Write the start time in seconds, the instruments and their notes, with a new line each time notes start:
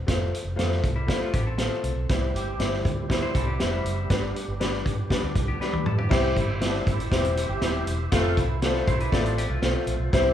0.07 fingered electric bass F1, upright piano A3 F4 C5, kick, snare, closed hi-hat
0.34 closed hi-hat
0.45 fingered electric bass F1
0.56 fingered electric bass F2, upright piano A3 F4 C5, snare, closed hi-hat
0.71 snare
0.84 fingered electric bass C2, kick, closed hi-hat
0.96 clean electric guitar G3 E4
1.07 upright piano A3 F4 C5, kick, snare, closed hi-hat
1.21 clean electric guitar A3 F4, muted fingered electric bass stroke
1.33 fingered electric bass A1, clean electric guitar B3 G4, kick, closed hi-hat
1.47 clean electric guitar C4 A4
1.57 upright piano A3 F4 C5, snare, closed hi-hat
1.84 fingered electric bass C2, closed hi-hat
1.96 fingered electric bass B1
2.09 fingered electric bass C2, upright piano G3 E4 C5, tonewheel organ G3 C4 E4 G4, kick, snare, closed hi-hat
2.33 fingered electric bass G1, horn section E3 C4 G4, closed hi-hat
2.59 fingered electric bass G1, upright piano G3 E4 C5, snare, closed hi-hat
2.73 snare
2.85 fingered electric bass D2, kick, closed hi-hat
3.09 horn section C3 G3 E4, upright piano G3 E4 C5, kick, snare, closed hi-hat
3.22 clean electric guitar E4 C5
3.35 fingered electric bass C2, horn section C3 G3 E4, clean electric guitar C4 A4, kick, closed hi-hat
3.47 clean electric guitar B3 G4
3.60 fingered electric bass F1, upright piano G3 E4 C5, snare, closed hi-hat
3.73 clean electric guitar G3 E4
3.84 fingered electric bass F#1, closed hi-hat
4.10 fingered electric bass G1, upright piano G3 D4 B4, tonewheel organ B3 D4, kick, snare, closed hi-hat
4.36 closed hi-hat
4.48 fingered electric bass G1
4.59 upright piano G3 D4 B4, snare, closed hi-hat
4.73 snare
4.85 fingered electric bass G2, kick, closed hi-hat
5.10 upright piano G3 D4 B4, kick, snare, closed hi-hat
5.23 fingered electric bass D2
5.35 fingered electric bass B1, kick, closed hi-hat
5.48 fingered electric bass D2, clean electric guitar B3 G4
5.61 upright piano G3 D4 B4, clean electric guitar D4 B4, muted fingered electric bass stroke, snare
5.73 fingered electric bass D2, high tom
5.86 fingered electric bass G2, clean electric guitar A4, mid tom
5.98 clean electric guitar B3 G4, floor tom
6.09 fingered electric bass C2, horn section E3 C4 G4, upright piano G3 C4 E4 C5, tonewheel organ E4 G4 E5, kick, snare, crash
6.13 tonewheel organ C5
6.36 fingered electric bass G1, horn section C3 G3 E4, kick, closed hi-hat
6.60 upright piano G3 C4 E4 C5, snare, closed hi-hat
6.64 horn section D3 B3 D4
6.74 snare
6.87 fingered electric bass G1, horn section C3 G3 E4, kick, closed hi-hat
7.00 closed hi-hat
7.11 fingered electric bass E1, upright piano G3 C4 E4 C5, kick, snare, closed hi-hat
7.15 horn section E3 C4 G4
7.24 closed hi-hat
7.37 horn section E3 C4 G4, closed hi-hat
7.49 fingered electric bass G1
7.61 fingered electric bass D#1, upright piano G3 C4 E4 C5, snare, closed hi-hat
7.87 fingered electric bass E1, closed hi-hat
8.12 fingered electric bass F1, horn section C3 A3 F4, tonewheel organ F3 A4, upright piano A3 C4 F4 C5, kick, snare, closed hi-hat
8.37 fingered electric bass C2, horn section E3 C4 E4, kick, closed hi-hat
8.61 horn section D3 B3 D4, upright piano A3 C4 F4 C5, snare, closed hi-hat
8.74 snare
8.87 fingered electric bass B1, horn section C3 A3 E4, clean electric guitar E4 C5, kick, closed hi-hat
9.00 clean electric guitar D4 B4, closed hi-hat
9.12 fingered electric bass A1, upright piano A3 C4 F4 D5, clean electric guitar C4 A4, kick, snare, closed hi-hat
9.26 closed hi-hat
9.38 clean electric guitar B3 G4, closed hi-hat
9.50 fingered electric bass C2, clean electric guitar A3 F4
9.62 fingered electric bass B1, upright piano A3 C4 F4 C5, snare, closed hi-hat
9.87 fingered electric bass A#1, closed hi-hat
10.00 fingered electric bass B1
10.12 fingered electric bass C2, upright piano G3 C4 E4 C5, tonewheel organ G4 E5 G5, kick, snare, closed hi-hat